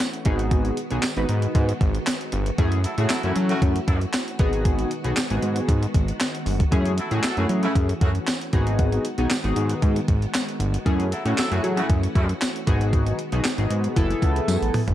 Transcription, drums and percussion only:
0.00 snare, closed hi-hat, tambourine
0.13 closed hi-hat
0.25 kick, closed hi-hat
0.39 closed hi-hat
0.51 kick, closed hi-hat
0.65 closed hi-hat
0.77 closed hi-hat
0.91 closed hi-hat
1.03 snare, clap, closed hi-hat, tambourine
1.17 closed hi-hat
1.29 closed hi-hat
1.42 closed hi-hat
1.55 kick, closed hi-hat
1.69 closed hi-hat
1.81 kick, closed hi-hat
1.95 closed hi-hat
2.07 snare, clap, closed hi-hat, tambourine
2.21 closed hi-hat
2.32 closed hi-hat
2.46 closed hi-hat
2.58 kick, closed hi-hat
2.72 closed hi-hat
2.84 closed hi-hat
2.98 closed hi-hat
3.09 snare, clap, closed hi-hat, tambourine
3.23 closed hi-hat
3.36 closed hi-hat
3.49 closed hi-hat
3.62 kick, closed hi-hat
3.76 closed hi-hat
3.88 kick, closed hi-hat
4.01 closed hi-hat
4.13 snare, clap, closed hi-hat, tambourine
4.28 closed hi-hat
4.39 kick, closed hi-hat
4.53 closed hi-hat
4.65 kick, closed hi-hat
4.79 closed hi-hat
4.91 closed hi-hat
5.04 closed hi-hat
5.16 snare, clap, closed hi-hat, tambourine
5.30 closed hi-hat
5.42 closed hi-hat
5.56 closed hi-hat
5.69 kick, closed hi-hat
5.83 closed hi-hat
5.94 kick, closed hi-hat
6.08 closed hi-hat
6.20 snare, clap, closed hi-hat, tambourine
6.35 closed hi-hat
6.46 open hi-hat
6.60 kick, closed hi-hat
6.72 kick, closed hi-hat
6.85 closed hi-hat
6.98 closed hi-hat
7.11 closed hi-hat
7.23 snare, clap, closed hi-hat, tambourine
7.37 closed hi-hat
7.49 closed hi-hat
7.63 closed hi-hat
7.75 kick, closed hi-hat
7.89 closed hi-hat
8.01 kick, closed hi-hat
8.15 closed hi-hat
8.27 snare, clap, closed hi-hat, tambourine
8.41 closed hi-hat
8.53 kick, closed hi-hat
8.67 closed hi-hat
8.79 kick, closed hi-hat
8.92 closed hi-hat
9.05 closed hi-hat
9.18 closed hi-hat
9.30 snare, clap, closed hi-hat, tambourine
9.44 closed hi-hat
9.56 closed hi-hat
9.69 closed hi-hat
9.82 kick, closed hi-hat
9.96 closed hi-hat
10.08 kick, closed hi-hat
10.22 closed hi-hat
10.34 snare, clap, closed hi-hat, tambourine
10.49 closed hi-hat
10.60 closed hi-hat
10.74 closed hi-hat
10.86 kick, closed hi-hat
11.00 closed hi-hat
11.12 closed hi-hat
11.26 closed hi-hat
11.38 snare, clap, closed hi-hat, tambourine
11.52 closed hi-hat
11.64 closed hi-hat
11.77 closed hi-hat
11.90 kick, closed hi-hat
12.03 closed hi-hat
12.15 kick, closed hi-hat
12.29 closed hi-hat
12.41 snare, clap, closed hi-hat, tambourine
12.56 closed hi-hat
12.67 kick, closed hi-hat
12.81 closed hi-hat
12.93 kick, closed hi-hat
13.06 closed hi-hat
13.19 closed hi-hat
13.32 closed hi-hat
13.44 snare, clap, closed hi-hat, tambourine
13.58 closed hi-hat
13.70 closed hi-hat
13.84 closed hi-hat
13.96 kick, closed hi-hat
14.11 closed hi-hat
14.22 kick, closed hi-hat
14.36 closed hi-hat
14.48 closed hi-hat, high tom, tambourine
14.62 closed hi-hat
14.74 mid tom, open hi-hat
14.88 closed hi-hat, floor tom

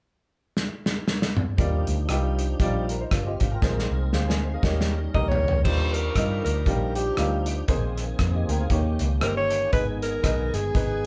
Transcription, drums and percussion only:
0.57 snare
0.86 snare
1.08 snare
1.22 snare
1.37 mid tom
1.58 kick, closed hi-hat
1.87 closed hi-hat
2.09 cross-stick, closed hi-hat
2.39 closed hi-hat
2.60 kick, closed hi-hat
2.89 closed hi-hat
3.11 kick, cross-stick, closed hi-hat
3.40 kick, closed hi-hat
3.62 kick, snare
3.79 snare
4.13 snare
4.30 snare
4.63 kick, snare
4.81 snare
5.14 kick, floor tom
5.32 floor tom
5.48 floor tom
5.65 kick, crash
5.94 cross-stick, closed hi-hat
6.16 kick, cross-stick, closed hi-hat
6.46 cross-stick, closed hi-hat
6.66 kick, closed hi-hat
6.95 closed hi-hat
7.17 cross-stick, closed hi-hat
7.46 closed hi-hat
7.68 kick, closed hi-hat
7.97 cross-stick, closed hi-hat
8.19 kick, cross-stick, closed hi-hat
8.49 closed hi-hat
8.70 kick, closed hi-hat
8.99 closed hi-hat
9.21 cross-stick, closed hi-hat
9.50 closed hi-hat
9.73 kick, closed hi-hat
10.02 cross-stick, closed hi-hat
10.24 kick, cross-stick, closed hi-hat
10.54 cross-stick, closed hi-hat
10.75 kick, closed hi-hat

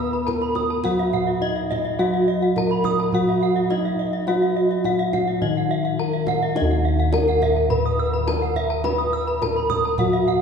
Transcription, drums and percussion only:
0.13 kendang slap
0.28 kendang high, kendang low
0.41 kendang slap
0.55 kendang high, kendang low
0.84 kendang low
0.99 kendang slap
1.13 kendang low
1.57 kendang slap
1.72 kendang high, kendang low
1.85 kendang slap
1.99 kendang high
2.14 kendang slap
2.42 kendang slap
2.56 kendang high, kendang low
2.84 kendang high, kendang low
2.99 kendang slap
3.13 kendang low
3.27 kendang slap
3.57 kendang slap
3.70 kendang high
3.85 kendang slap
4.13 kendang slap
4.27 kendang high
4.42 kendang slap
4.71 kendang slap
4.84 kendang high, kendang low
4.98 kendang slap
5.13 kendang high, kendang low
5.28 kendang slap
5.42 kendang low
5.56 kendang slap
5.84 kendang slap
6.12 kendang slap
6.27 kendang high, kendang low
6.41 kendang slap
6.56 kendang high
6.70 kendang slap
6.98 kendang slap
7.13 kendang high
7.28 kendang slap
7.42 kendang high, kendang low
7.56 kendang slap
7.70 kendang low
7.85 kendang slap
8.14 kendang slap
8.28 kendang high
8.42 kendang slap
8.56 kendang low
8.70 kendang slap
8.84 kendang high
8.99 kendang slap
9.28 kendang slap
9.42 kendang high, kendang low
9.56 kendang slap
9.70 kendang high, kendang low
9.84 kendang slap
9.98 kendang low
10.14 kendang slap
10.28 kendang low

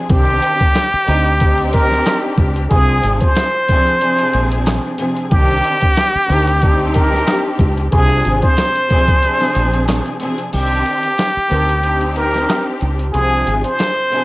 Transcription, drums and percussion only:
0.10 kick, closed hi-hat
0.43 closed hi-hat
0.60 kick, closed hi-hat
0.75 snare, clap, closed hi-hat
1.08 closed hi-hat
1.26 closed hi-hat
1.40 kick, closed hi-hat
1.58 closed hi-hat
1.73 kick, closed hi-hat
1.91 snare, closed hi-hat
2.06 snare, clap, closed hi-hat
2.38 kick, closed hi-hat
2.56 closed hi-hat
2.71 kick, closed hi-hat
3.04 closed hi-hat
3.21 kick, closed hi-hat
3.35 snare, clap, closed hi-hat
3.69 kick, closed hi-hat
3.87 closed hi-hat
4.01 closed hi-hat
4.19 closed hi-hat
4.33 closed hi-hat
4.52 closed hi-hat
4.66 snare, clap, closed hi-hat
4.98 closed hi-hat
5.17 closed hi-hat
5.31 kick, closed hi-hat
5.64 closed hi-hat
5.81 kick, closed hi-hat
5.96 snare, clap, closed hi-hat
6.29 closed hi-hat
6.47 closed hi-hat
6.62 kick, closed hi-hat
6.79 closed hi-hat
6.94 kick, closed hi-hat
7.12 snare, closed hi-hat
7.27 snare, clap, closed hi-hat
7.59 kick, closed hi-hat
7.77 closed hi-hat
7.92 kick, closed hi-hat
8.10 closed hi-hat
8.25 closed hi-hat
8.42 kick, closed hi-hat
8.57 snare, clap, closed hi-hat
8.76 closed hi-hat
8.90 kick, closed hi-hat
9.08 kick, closed hi-hat
9.23 closed hi-hat
9.40 snare, closed hi-hat
9.55 closed hi-hat
9.73 closed hi-hat
9.88 snare, clap, closed hi-hat
10.06 closed hi-hat
10.20 closed hi-hat
10.38 closed hi-hat
10.53 closed hi-hat, crash
10.86 closed hi-hat
11.03 closed hi-hat
11.18 snare, clap, closed hi-hat
11.51 closed hi-hat
11.69 closed hi-hat
11.83 closed hi-hat
12.01 closed hi-hat
12.16 closed hi-hat
12.34 snare, closed hi-hat
12.49 snare, clap, closed hi-hat
12.81 closed hi-hat
12.99 closed hi-hat
13.14 closed hi-hat
13.47 closed hi-hat
13.64 closed hi-hat
13.79 snare, clap, closed hi-hat
14.12 closed hi-hat

